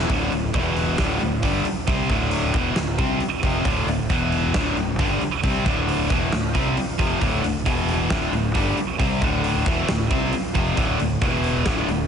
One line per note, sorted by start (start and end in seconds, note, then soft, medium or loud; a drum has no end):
0.10 0.30 D1 medium
0.10 0.31 D2 medium
0.10 0.31 A2 medium
0.10 0.32 D3 medium
0.10 kick loud
0.10 open hi-hat medium
0.32 0.53 D1 medium
0.32 0.50 D2 medium
0.32 0.50 A2 medium
0.32 open hi-hat medium
0.54 0.96 E1 medium
0.54 0.98 E2 loud
0.54 0.98 B2 medium
0.54 0.99 E3 loud
0.54 kick loud
0.54 open hi-hat medium
0.77 open hi-hat medium
0.98 1.19 D1 medium
0.98 1.20 D2 medium
0.98 1.21 A2 medium
0.98 1.21 D3 medium
0.98 kick loud
0.98 snare loud
0.98 open hi-hat medium
1.20 1.42 D1 medium
1.20 1.39 D2 medium
1.20 1.39 A2 medium
1.20 open hi-hat soft
1.43 1.64 G1 medium
1.43 1.65 G2 medium
1.43 1.65 D3 medium
1.43 1.66 G3 loud
1.43 kick loud
1.43 open hi-hat medium
1.65 muted fingered electric bass stroke soft
1.65 muted distorted electric guitar stroke medium
1.65 muted overdriven electric guitar stroke medium
1.65 open hi-hat medium
1.87 2.08 C2 medium
1.87 2.09 C3 medium
1.87 2.10 G3 medium
1.87 2.10 C4 loud
1.87 kick loud
1.87 open hi-hat medium
2.09 2.51 D1 medium
2.09 2.54 D2 medium
2.09 2.54 A2 medium
2.09 2.55 D3 medium
2.09 kick loud
2.09 open hi-hat medium
2.31 open hi-hat medium
2.54 2.75 E1 medium
2.54 2.76 E2 medium
2.54 2.76 B2 medium
2.54 2.77 E3 medium
2.54 kick loud
2.54 open hi-hat medium
2.76 2.97 D1 medium
2.76 2.95 D2 medium
2.76 2.95 A2 medium
2.76 snare loud
2.76 open hi-hat medium
2.98 3.20 C2 medium
2.98 3.20 C3 medium
2.98 3.21 G3 medium
2.98 3.21 C4 medium
2.98 kick loud
2.98 open hi-hat medium
3.20 muted fingered electric bass stroke soft
3.20 muted distorted electric guitar stroke medium
3.20 muted overdriven electric guitar stroke medium
3.20 open hi-hat medium
3.43 3.64 F1 medium
3.43 3.65 F2 medium
3.43 3.65 C3 medium
3.43 3.65 F3 medium
3.43 kick loud
3.43 open hi-hat medium
3.65 3.86 D1 medium
3.65 3.87 D2 medium
3.65 3.87 A2 medium
3.65 3.87 D3 loud
3.65 kick loud
3.65 open hi-hat medium
3.87 4.08 D1 medium
3.87 4.06 D2 medium
3.87 4.06 A2 medium
3.87 open hi-hat medium
4.10 4.51 E1 medium
4.10 4.54 E2 medium
4.10 4.54 B2 medium
4.10 4.55 E3 medium
4.10 kick loud
4.10 open hi-hat medium
4.32 open hi-hat medium
4.54 4.75 D1 medium
4.54 4.76 D2 medium
4.54 4.76 A2 medium
4.54 4.77 D3 loud
4.54 kick loud
4.54 snare loud
4.54 open hi-hat medium
4.76 4.97 D1 medium
4.76 4.95 D2 medium
4.76 4.95 A2 medium
4.76 open hi-hat medium
4.99 5.20 G1 medium
4.99 5.21 G2 loud
4.99 5.21 D3 loud
4.99 5.21 G3 loud
4.99 kick loud
4.99 open hi-hat medium
5.21 muted distorted electric guitar stroke medium
5.21 muted fingered electric bass stroke soft
5.21 muted overdriven electric guitar stroke medium
5.21 open hi-hat soft
5.43 5.65 C2 medium
5.43 5.66 C3 medium
5.43 5.66 G3 medium
5.43 5.66 C4 medium
5.43 kick loud
5.43 open hi-hat medium
5.66 6.07 D1 medium
5.66 6.10 D2 medium
5.66 6.10 A2 medium
5.66 6.11 D3 medium
5.66 kick loud
5.66 open hi-hat medium
5.89 open hi-hat medium
6.10 6.31 E1 medium
6.10 6.32 E2 medium
6.10 6.33 B2 medium
6.10 6.33 E3 loud
6.10 kick loud
6.10 open hi-hat medium
6.32 6.54 D1 medium
6.32 6.51 D2 medium
6.32 6.51 A2 medium
6.32 snare loud
6.32 open hi-hat medium
6.55 6.76 C2 medium
6.55 6.77 C3 medium
6.55 6.77 G3 medium
6.55 6.77 C4 medium
6.55 kick loud
6.55 open hi-hat medium
6.76 muted distorted electric guitar stroke medium
6.76 muted fingered electric bass stroke soft
6.76 muted overdriven electric guitar stroke medium
6.76 open hi-hat medium
6.99 7.20 F1 medium
6.99 7.21 F2 medium
6.99 7.21 C3 medium
6.99 7.22 F3 medium
6.99 kick loud
6.99 open hi-hat medium
7.21 7.42 D1 medium
7.21 7.43 D2 medium
7.21 7.43 A2 loud
7.21 7.44 D3 medium
7.21 kick loud
7.21 open hi-hat medium
7.44 7.65 D1 medium
7.44 7.62 D2 medium
7.44 7.62 A2 medium
7.44 open hi-hat medium
7.66 8.08 E1 medium
7.66 8.10 E2 medium
7.66 8.10 B2 medium
7.66 8.10 E3 medium
7.66 kick loud
7.66 open hi-hat medium
7.88 open hi-hat medium
8.10 8.31 D1 medium
8.10 8.32 D2 medium
8.10 8.33 A2 medium
8.10 8.33 D3 loud
8.10 kick loud
8.10 snare loud
8.10 open hi-hat medium
8.32 8.53 D1 medium
8.32 8.51 D2 medium
8.32 8.51 A2 medium
8.32 open hi-hat soft
8.55 8.76 G1 medium
8.55 8.77 G2 medium
8.55 8.77 D3 medium
8.55 8.77 G3 loud
8.55 kick loud
8.55 open hi-hat medium
8.77 muted distorted electric guitar stroke medium
8.77 muted fingered electric bass stroke soft
8.77 muted overdriven electric guitar stroke medium
8.77 open hi-hat soft
9.00 9.20 C2 medium
9.00 9.21 C3 medium
9.00 9.22 G3 loud
9.00 9.22 C4 loud
9.00 kick loud
9.00 open hi-hat medium
9.22 9.63 D1 medium
9.22 9.66 D2 medium
9.22 9.66 A2 medium
9.22 9.66 D3 medium
9.22 kick loud
9.22 open hi-hat medium
9.44 open hi-hat medium
9.66 9.87 E1 medium
9.66 9.88 E2 medium
9.66 9.88 B2 medium
9.66 9.89 E3 loud
9.66 kick loud
9.66 snare soft
9.66 open hi-hat medium
9.88 10.09 D1 medium
9.88 10.07 D2 medium
9.88 10.07 A2 medium
9.88 snare loud
9.88 open hi-hat medium
10.10 10.31 C2 medium
10.10 10.32 C3 medium
10.10 10.33 G3 medium
10.10 10.33 C4 loud
10.10 kick loud
10.10 open hi-hat medium
10.32 muted distorted electric guitar stroke medium
10.32 muted fingered electric bass stroke soft
10.32 muted overdriven electric guitar stroke medium
10.32 open hi-hat medium
10.55 10.76 F1 medium
10.55 10.77 F2 medium
10.55 10.77 C3 medium
10.55 10.77 F3 loud
10.55 kick loud
10.55 open hi-hat medium
10.77 10.98 D1 medium
10.77 10.99 D2 medium
10.77 10.99 A2 medium
10.77 11.00 D3 loud
10.77 kick loud
10.77 open hi-hat medium
11.00 11.20 D1 medium
11.00 11.18 D2 medium
11.00 11.18 A2 medium
11.00 open hi-hat medium
11.21 11.63 E1 medium
11.21 11.65 E2 medium
11.21 11.66 B2 loud
11.21 11.66 E3 loud
11.21 kick loud
11.21 open hi-hat medium
11.44 open hi-hat medium
11.66 11.87 D1 loud
11.66 11.87 D2 medium
11.66 11.88 A2 medium
11.66 11.88 D3 medium
11.66 kick loud
11.66 snare loud
11.66 open hi-hat medium
11.88 12.07 D1 medium
11.88 12.06 D2 medium
11.88 12.07 A2 medium
11.88 open hi-hat medium